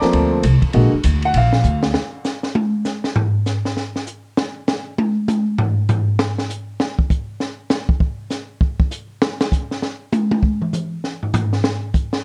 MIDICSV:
0, 0, Header, 1, 5, 480
1, 0, Start_track
1, 0, Tempo, 302877
1, 1173, Time_signature, 4, 2, 24, 8
1, 19401, End_track
2, 0, Start_track
2, 0, Title_t, "Upright piano"
2, 0, Program_c, 0, 0
2, 0, Note_on_c, 0, 74, 72
2, 0, Note_on_c, 0, 81, 67
2, 0, Note_on_c, 0, 82, 66
2, 0, Note_on_c, 0, 86, 83
2, 28, Note_on_c, 0, 53, 71
2, 32, Note_on_c, 0, 57, 67
2, 36, Note_on_c, 0, 58, 68
2, 36, Note_on_c, 0, 60, 85
2, 496, Note_off_c, 0, 86, 0
2, 497, Note_off_c, 0, 81, 0
2, 499, Note_off_c, 0, 82, 0
2, 500, Note_off_c, 0, 74, 0
2, 655, Note_off_c, 0, 53, 0
2, 657, Note_off_c, 0, 57, 0
2, 659, Note_off_c, 0, 58, 0
2, 659, Note_off_c, 0, 60, 0
2, 1167, Note_on_c, 0, 50, 65
2, 1169, Note_on_c, 0, 56, 60
2, 1175, Note_on_c, 0, 66, 69
2, 1176, Note_on_c, 0, 58, 53
2, 1437, Note_off_c, 0, 50, 0
2, 1438, Note_off_c, 0, 56, 0
2, 1442, Note_off_c, 0, 58, 0
2, 1442, Note_off_c, 0, 66, 0
2, 1986, Note_on_c, 0, 78, 102
2, 2146, Note_off_c, 0, 78, 0
2, 2178, Note_on_c, 0, 77, 86
2, 2881, Note_off_c, 0, 77, 0
2, 19401, End_track
3, 0, Start_track
3, 0, Title_t, "Upright bass"
3, 0, Program_c, 1, 32
3, 204, Note_on_c, 1, 38, 86
3, 674, Note_off_c, 1, 38, 0
3, 691, Note_on_c, 1, 36, 98
3, 968, Note_off_c, 1, 36, 0
3, 1176, Note_on_c, 1, 34, 93
3, 1451, Note_off_c, 1, 34, 0
3, 1651, Note_on_c, 1, 38, 101
3, 2114, Note_off_c, 1, 38, 0
3, 2123, Note_on_c, 1, 34, 81
3, 2584, Note_off_c, 1, 34, 0
3, 2594, Note_on_c, 1, 38, 91
3, 3069, Note_off_c, 1, 38, 0
3, 19401, End_track
4, 0, Start_track
4, 0, Title_t, "Muted upright bass strokes"
4, 34, Note_on_c, 9, 29, 42
4, 192, Note_off_c, 9, 29, 0
4, 982, Note_on_c, 9, 29, 38
4, 1141, Note_off_c, 9, 29, 0
4, 1475, Note_on_c, 9, 29, 43
4, 1634, Note_off_c, 9, 29, 0
4, 19401, End_track
5, 0, Start_track
5, 0, Title_t, "Drums"
5, 24, Note_on_c, 9, 38, 52
5, 182, Note_off_c, 9, 38, 0
5, 208, Note_on_c, 9, 51, 60
5, 366, Note_off_c, 9, 51, 0
5, 687, Note_on_c, 9, 44, 62
5, 687, Note_on_c, 9, 51, 71
5, 845, Note_off_c, 9, 44, 0
5, 845, Note_off_c, 9, 51, 0
5, 984, Note_on_c, 9, 36, 64
5, 986, Note_on_c, 9, 51, 51
5, 1142, Note_off_c, 9, 36, 0
5, 1144, Note_off_c, 9, 51, 0
5, 1160, Note_on_c, 9, 51, 58
5, 1319, Note_off_c, 9, 51, 0
5, 1641, Note_on_c, 9, 44, 69
5, 1641, Note_on_c, 9, 51, 74
5, 1800, Note_off_c, 9, 44, 0
5, 1800, Note_off_c, 9, 51, 0
5, 1939, Note_on_c, 9, 51, 50
5, 2098, Note_off_c, 9, 51, 0
5, 2122, Note_on_c, 9, 51, 74
5, 2281, Note_off_c, 9, 51, 0
5, 2419, Note_on_c, 9, 38, 53
5, 2578, Note_off_c, 9, 38, 0
5, 2593, Note_on_c, 9, 44, 57
5, 2752, Note_off_c, 9, 44, 0
5, 2895, Note_on_c, 9, 38, 74
5, 3054, Note_off_c, 9, 38, 0
5, 3074, Note_on_c, 9, 38, 96
5, 3233, Note_off_c, 9, 38, 0
5, 3559, Note_on_c, 9, 44, 54
5, 3564, Note_on_c, 9, 38, 50
5, 3717, Note_off_c, 9, 44, 0
5, 3722, Note_off_c, 9, 38, 0
5, 3855, Note_on_c, 9, 38, 47
5, 4014, Note_off_c, 9, 38, 0
5, 4044, Note_on_c, 9, 48, 98
5, 4202, Note_off_c, 9, 48, 0
5, 4512, Note_on_c, 9, 44, 54
5, 4517, Note_on_c, 9, 38, 41
5, 4671, Note_off_c, 9, 44, 0
5, 4675, Note_off_c, 9, 38, 0
5, 4819, Note_on_c, 9, 38, 47
5, 4977, Note_off_c, 9, 38, 0
5, 5002, Note_on_c, 9, 43, 89
5, 5161, Note_off_c, 9, 43, 0
5, 5482, Note_on_c, 9, 44, 53
5, 5487, Note_on_c, 9, 38, 38
5, 5641, Note_off_c, 9, 44, 0
5, 5646, Note_off_c, 9, 38, 0
5, 5790, Note_on_c, 9, 38, 44
5, 5948, Note_off_c, 9, 38, 0
5, 5971, Note_on_c, 9, 38, 36
5, 6129, Note_off_c, 9, 38, 0
5, 6271, Note_on_c, 9, 38, 36
5, 6429, Note_off_c, 9, 38, 0
5, 6446, Note_on_c, 9, 44, 54
5, 6605, Note_off_c, 9, 44, 0
5, 6931, Note_on_c, 9, 38, 93
5, 7090, Note_off_c, 9, 38, 0
5, 7412, Note_on_c, 9, 44, 54
5, 7417, Note_on_c, 9, 38, 94
5, 7571, Note_off_c, 9, 44, 0
5, 7576, Note_off_c, 9, 38, 0
5, 7898, Note_on_c, 9, 48, 95
5, 8057, Note_off_c, 9, 48, 0
5, 8368, Note_on_c, 9, 44, 59
5, 8373, Note_on_c, 9, 48, 92
5, 8526, Note_off_c, 9, 44, 0
5, 8531, Note_off_c, 9, 48, 0
5, 8850, Note_on_c, 9, 43, 92
5, 9009, Note_off_c, 9, 43, 0
5, 9330, Note_on_c, 9, 44, 52
5, 9335, Note_on_c, 9, 43, 100
5, 9489, Note_off_c, 9, 44, 0
5, 9493, Note_off_c, 9, 43, 0
5, 9812, Note_on_c, 9, 38, 90
5, 9970, Note_off_c, 9, 38, 0
5, 10118, Note_on_c, 9, 38, 53
5, 10276, Note_off_c, 9, 38, 0
5, 10299, Note_on_c, 9, 44, 57
5, 10458, Note_off_c, 9, 44, 0
5, 10774, Note_on_c, 9, 38, 86
5, 10933, Note_off_c, 9, 38, 0
5, 11072, Note_on_c, 9, 36, 76
5, 11230, Note_off_c, 9, 36, 0
5, 11254, Note_on_c, 9, 44, 52
5, 11256, Note_on_c, 9, 36, 74
5, 11413, Note_off_c, 9, 44, 0
5, 11414, Note_off_c, 9, 36, 0
5, 11732, Note_on_c, 9, 38, 47
5, 11890, Note_off_c, 9, 38, 0
5, 12201, Note_on_c, 9, 44, 57
5, 12206, Note_on_c, 9, 38, 94
5, 12360, Note_off_c, 9, 44, 0
5, 12364, Note_off_c, 9, 38, 0
5, 12502, Note_on_c, 9, 36, 83
5, 12661, Note_off_c, 9, 36, 0
5, 12683, Note_on_c, 9, 36, 75
5, 12841, Note_off_c, 9, 36, 0
5, 13156, Note_on_c, 9, 44, 50
5, 13161, Note_on_c, 9, 38, 38
5, 13315, Note_off_c, 9, 44, 0
5, 13320, Note_off_c, 9, 38, 0
5, 13641, Note_on_c, 9, 36, 77
5, 13800, Note_off_c, 9, 36, 0
5, 13940, Note_on_c, 9, 36, 82
5, 14099, Note_off_c, 9, 36, 0
5, 14119, Note_on_c, 9, 44, 57
5, 14277, Note_off_c, 9, 44, 0
5, 14607, Note_on_c, 9, 38, 91
5, 14766, Note_off_c, 9, 38, 0
5, 14908, Note_on_c, 9, 38, 95
5, 15067, Note_off_c, 9, 38, 0
5, 15087, Note_on_c, 9, 36, 77
5, 15088, Note_on_c, 9, 44, 55
5, 15245, Note_off_c, 9, 36, 0
5, 15247, Note_off_c, 9, 44, 0
5, 15394, Note_on_c, 9, 38, 40
5, 15552, Note_off_c, 9, 38, 0
5, 15570, Note_on_c, 9, 38, 51
5, 15728, Note_off_c, 9, 38, 0
5, 16043, Note_on_c, 9, 44, 56
5, 16048, Note_on_c, 9, 48, 101
5, 16202, Note_off_c, 9, 44, 0
5, 16207, Note_off_c, 9, 48, 0
5, 16345, Note_on_c, 9, 48, 102
5, 16504, Note_off_c, 9, 48, 0
5, 16525, Note_on_c, 9, 36, 73
5, 16683, Note_off_c, 9, 36, 0
5, 16824, Note_on_c, 9, 47, 40
5, 16982, Note_off_c, 9, 47, 0
5, 17004, Note_on_c, 9, 44, 55
5, 17009, Note_on_c, 9, 47, 48
5, 17162, Note_off_c, 9, 44, 0
5, 17167, Note_off_c, 9, 47, 0
5, 17495, Note_on_c, 9, 38, 32
5, 17653, Note_off_c, 9, 38, 0
5, 17793, Note_on_c, 9, 43, 36
5, 17951, Note_off_c, 9, 43, 0
5, 17965, Note_on_c, 9, 44, 61
5, 17969, Note_on_c, 9, 43, 91
5, 18123, Note_off_c, 9, 44, 0
5, 18128, Note_off_c, 9, 43, 0
5, 18269, Note_on_c, 9, 38, 40
5, 18427, Note_off_c, 9, 38, 0
5, 18446, Note_on_c, 9, 38, 94
5, 18604, Note_off_c, 9, 38, 0
5, 18921, Note_on_c, 9, 44, 52
5, 18926, Note_on_c, 9, 36, 77
5, 19079, Note_off_c, 9, 44, 0
5, 19085, Note_off_c, 9, 36, 0
5, 19220, Note_on_c, 9, 38, 59
5, 19379, Note_off_c, 9, 38, 0
5, 19401, End_track
0, 0, End_of_file